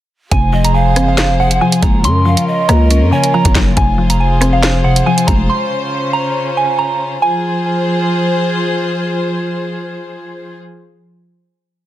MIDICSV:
0, 0, Header, 1, 7, 480
1, 0, Start_track
1, 0, Tempo, 431655
1, 350, Time_signature, 4, 2, 24, 8
1, 13191, End_track
2, 0, Start_track
2, 0, Title_t, "Synth bell"
2, 0, Program_c, 0, 98
2, 350, Note_on_c, 0, 80, 115
2, 695, Note_off_c, 0, 80, 0
2, 717, Note_on_c, 0, 82, 76
2, 822, Note_off_c, 0, 82, 0
2, 827, Note_on_c, 0, 80, 76
2, 1174, Note_off_c, 0, 80, 0
2, 1205, Note_on_c, 0, 77, 79
2, 1533, Note_off_c, 0, 77, 0
2, 1555, Note_on_c, 0, 78, 76
2, 1775, Note_off_c, 0, 78, 0
2, 1794, Note_on_c, 0, 80, 89
2, 2014, Note_off_c, 0, 80, 0
2, 2029, Note_on_c, 0, 82, 82
2, 2251, Note_off_c, 0, 82, 0
2, 2278, Note_on_c, 0, 84, 100
2, 2951, Note_off_c, 0, 84, 0
2, 2987, Note_on_c, 0, 82, 91
2, 3440, Note_off_c, 0, 82, 0
2, 3475, Note_on_c, 0, 80, 79
2, 3695, Note_off_c, 0, 80, 0
2, 3714, Note_on_c, 0, 82, 88
2, 3934, Note_off_c, 0, 82, 0
2, 4194, Note_on_c, 0, 80, 117
2, 4538, Note_off_c, 0, 80, 0
2, 4558, Note_on_c, 0, 82, 82
2, 4662, Note_off_c, 0, 82, 0
2, 4673, Note_on_c, 0, 80, 87
2, 5017, Note_off_c, 0, 80, 0
2, 5036, Note_on_c, 0, 77, 78
2, 5369, Note_off_c, 0, 77, 0
2, 5385, Note_on_c, 0, 78, 82
2, 5609, Note_off_c, 0, 78, 0
2, 5629, Note_on_c, 0, 80, 95
2, 5852, Note_off_c, 0, 80, 0
2, 5863, Note_on_c, 0, 82, 90
2, 6088, Note_off_c, 0, 82, 0
2, 6110, Note_on_c, 0, 84, 87
2, 6787, Note_off_c, 0, 84, 0
2, 6820, Note_on_c, 0, 82, 90
2, 7276, Note_off_c, 0, 82, 0
2, 7308, Note_on_c, 0, 80, 81
2, 7531, Note_off_c, 0, 80, 0
2, 7546, Note_on_c, 0, 82, 84
2, 7770, Note_off_c, 0, 82, 0
2, 8031, Note_on_c, 0, 80, 83
2, 9426, Note_off_c, 0, 80, 0
2, 13191, End_track
3, 0, Start_track
3, 0, Title_t, "Pan flute"
3, 0, Program_c, 1, 75
3, 590, Note_on_c, 1, 75, 88
3, 818, Note_off_c, 1, 75, 0
3, 830, Note_on_c, 1, 77, 90
3, 1507, Note_off_c, 1, 77, 0
3, 1551, Note_on_c, 1, 78, 86
3, 1779, Note_off_c, 1, 78, 0
3, 2510, Note_on_c, 1, 77, 77
3, 2738, Note_off_c, 1, 77, 0
3, 2750, Note_on_c, 1, 75, 97
3, 3427, Note_off_c, 1, 75, 0
3, 3470, Note_on_c, 1, 73, 83
3, 4147, Note_off_c, 1, 73, 0
3, 13191, End_track
4, 0, Start_track
4, 0, Title_t, "String section"
4, 0, Program_c, 2, 48
4, 351, Note_on_c, 2, 72, 92
4, 352, Note_on_c, 2, 53, 83
4, 352, Note_on_c, 2, 65, 74
4, 352, Note_on_c, 2, 68, 77
4, 2252, Note_off_c, 2, 53, 0
4, 2252, Note_off_c, 2, 68, 0
4, 2252, Note_off_c, 2, 72, 0
4, 2270, Note_on_c, 2, 53, 83
4, 2270, Note_on_c, 2, 61, 77
4, 2270, Note_on_c, 2, 70, 89
4, 4171, Note_off_c, 2, 53, 0
4, 4171, Note_off_c, 2, 61, 0
4, 4171, Note_off_c, 2, 70, 0
4, 4191, Note_on_c, 2, 53, 86
4, 4191, Note_on_c, 2, 72, 92
4, 4192, Note_on_c, 2, 68, 79
4, 6091, Note_off_c, 2, 53, 0
4, 6092, Note_off_c, 2, 68, 0
4, 6111, Note_on_c, 2, 49, 81
4, 6111, Note_on_c, 2, 61, 77
4, 7986, Note_off_c, 2, 65, 0
4, 7992, Note_off_c, 2, 72, 0
4, 8012, Note_off_c, 2, 49, 0
4, 8012, Note_off_c, 2, 61, 0
4, 8031, Note_on_c, 2, 65, 77
4, 8031, Note_on_c, 2, 68, 79
4, 8031, Note_on_c, 2, 72, 93
4, 8032, Note_on_c, 2, 53, 86
4, 11738, Note_off_c, 2, 53, 0
4, 11738, Note_off_c, 2, 65, 0
4, 11738, Note_off_c, 2, 68, 0
4, 11738, Note_off_c, 2, 72, 0
4, 13191, End_track
5, 0, Start_track
5, 0, Title_t, "Synth pluck"
5, 0, Program_c, 3, 84
5, 354, Note_on_c, 3, 48, 89
5, 588, Note_on_c, 3, 53, 79
5, 1070, Note_on_c, 3, 60, 102
5, 1306, Note_on_c, 3, 72, 84
5, 1543, Note_off_c, 3, 48, 0
5, 1556, Note_on_c, 3, 48, 76
5, 1778, Note_off_c, 3, 53, 0
5, 1791, Note_on_c, 3, 53, 98
5, 2033, Note_on_c, 3, 56, 82
5, 2267, Note_on_c, 3, 49, 88
5, 2268, Note_off_c, 3, 72, 0
5, 2270, Note_off_c, 3, 60, 0
5, 2271, Note_off_c, 3, 53, 0
5, 2271, Note_off_c, 3, 56, 0
5, 2273, Note_off_c, 3, 48, 0
5, 2506, Note_on_c, 3, 53, 78
5, 2999, Note_on_c, 3, 58, 105
5, 3231, Note_on_c, 3, 61, 86
5, 3447, Note_off_c, 3, 49, 0
5, 3461, Note_on_c, 3, 49, 77
5, 3702, Note_off_c, 3, 53, 0
5, 3715, Note_on_c, 3, 53, 93
5, 3953, Note_on_c, 3, 54, 80
5, 4186, Note_off_c, 3, 49, 0
5, 4187, Note_on_c, 3, 48, 99
5, 4191, Note_off_c, 3, 61, 0
5, 4192, Note_off_c, 3, 54, 0
5, 4193, Note_off_c, 3, 53, 0
5, 4194, Note_off_c, 3, 58, 0
5, 4427, Note_on_c, 3, 53, 79
5, 4902, Note_on_c, 3, 60, 104
5, 5152, Note_on_c, 3, 72, 82
5, 5375, Note_off_c, 3, 48, 0
5, 5388, Note_on_c, 3, 48, 77
5, 5621, Note_off_c, 3, 53, 0
5, 5634, Note_on_c, 3, 53, 87
5, 5873, Note_on_c, 3, 56, 74
5, 6106, Note_off_c, 3, 60, 0
5, 6109, Note_off_c, 3, 48, 0
5, 6111, Note_off_c, 3, 72, 0
5, 6112, Note_off_c, 3, 53, 0
5, 6112, Note_off_c, 3, 56, 0
5, 13191, End_track
6, 0, Start_track
6, 0, Title_t, "808-style bass"
6, 0, Program_c, 4, 38
6, 350, Note_on_c, 4, 29, 104
6, 1070, Note_on_c, 4, 30, 98
6, 1087, Note_off_c, 4, 29, 0
6, 1438, Note_on_c, 4, 29, 97
6, 1455, Note_off_c, 4, 30, 0
6, 1773, Note_off_c, 4, 29, 0
6, 2030, Note_on_c, 4, 30, 107
6, 2270, Note_on_c, 4, 42, 100
6, 2287, Note_off_c, 4, 30, 0
6, 2619, Note_off_c, 4, 42, 0
6, 2990, Note_on_c, 4, 37, 111
6, 3357, Note_on_c, 4, 42, 98
6, 3374, Note_off_c, 4, 37, 0
6, 3465, Note_off_c, 4, 42, 0
6, 3838, Note_on_c, 4, 30, 104
6, 3943, Note_off_c, 4, 30, 0
6, 3950, Note_on_c, 4, 30, 104
6, 4180, Note_off_c, 4, 30, 0
6, 4190, Note_on_c, 4, 29, 110
6, 5586, Note_off_c, 4, 29, 0
6, 5870, Note_on_c, 4, 29, 104
6, 6101, Note_off_c, 4, 29, 0
6, 13191, End_track
7, 0, Start_track
7, 0, Title_t, "Drums"
7, 350, Note_on_c, 9, 36, 109
7, 350, Note_on_c, 9, 42, 78
7, 462, Note_off_c, 9, 36, 0
7, 462, Note_off_c, 9, 42, 0
7, 717, Note_on_c, 9, 42, 87
7, 828, Note_off_c, 9, 42, 0
7, 1070, Note_on_c, 9, 42, 84
7, 1071, Note_on_c, 9, 37, 83
7, 1182, Note_off_c, 9, 37, 0
7, 1182, Note_off_c, 9, 42, 0
7, 1311, Note_on_c, 9, 38, 101
7, 1311, Note_on_c, 9, 42, 74
7, 1314, Note_on_c, 9, 39, 85
7, 1422, Note_off_c, 9, 38, 0
7, 1422, Note_off_c, 9, 42, 0
7, 1425, Note_off_c, 9, 39, 0
7, 1677, Note_on_c, 9, 42, 76
7, 1789, Note_off_c, 9, 42, 0
7, 1917, Note_on_c, 9, 42, 84
7, 2028, Note_off_c, 9, 42, 0
7, 2030, Note_on_c, 9, 36, 108
7, 2030, Note_on_c, 9, 42, 88
7, 2141, Note_off_c, 9, 36, 0
7, 2141, Note_off_c, 9, 42, 0
7, 2270, Note_on_c, 9, 42, 78
7, 2382, Note_off_c, 9, 42, 0
7, 2637, Note_on_c, 9, 42, 90
7, 2748, Note_off_c, 9, 42, 0
7, 2990, Note_on_c, 9, 42, 86
7, 2991, Note_on_c, 9, 37, 89
7, 3101, Note_off_c, 9, 42, 0
7, 3102, Note_off_c, 9, 37, 0
7, 3231, Note_on_c, 9, 42, 77
7, 3342, Note_off_c, 9, 42, 0
7, 3598, Note_on_c, 9, 42, 78
7, 3709, Note_off_c, 9, 42, 0
7, 3837, Note_on_c, 9, 42, 84
7, 3838, Note_on_c, 9, 36, 94
7, 3948, Note_off_c, 9, 42, 0
7, 3949, Note_off_c, 9, 36, 0
7, 3950, Note_on_c, 9, 36, 109
7, 3950, Note_on_c, 9, 38, 119
7, 3950, Note_on_c, 9, 42, 82
7, 3953, Note_on_c, 9, 39, 95
7, 4061, Note_off_c, 9, 36, 0
7, 4061, Note_off_c, 9, 38, 0
7, 4061, Note_off_c, 9, 42, 0
7, 4064, Note_off_c, 9, 39, 0
7, 4190, Note_on_c, 9, 36, 113
7, 4190, Note_on_c, 9, 42, 76
7, 4301, Note_off_c, 9, 36, 0
7, 4301, Note_off_c, 9, 42, 0
7, 4558, Note_on_c, 9, 42, 86
7, 4669, Note_off_c, 9, 42, 0
7, 4910, Note_on_c, 9, 42, 82
7, 4911, Note_on_c, 9, 37, 84
7, 5022, Note_off_c, 9, 37, 0
7, 5022, Note_off_c, 9, 42, 0
7, 5150, Note_on_c, 9, 38, 105
7, 5150, Note_on_c, 9, 42, 69
7, 5154, Note_on_c, 9, 39, 82
7, 5261, Note_off_c, 9, 42, 0
7, 5262, Note_off_c, 9, 38, 0
7, 5265, Note_off_c, 9, 39, 0
7, 5518, Note_on_c, 9, 42, 77
7, 5629, Note_off_c, 9, 42, 0
7, 5758, Note_on_c, 9, 42, 80
7, 5869, Note_off_c, 9, 42, 0
7, 5870, Note_on_c, 9, 36, 104
7, 5870, Note_on_c, 9, 42, 88
7, 5981, Note_off_c, 9, 36, 0
7, 5981, Note_off_c, 9, 42, 0
7, 13191, End_track
0, 0, End_of_file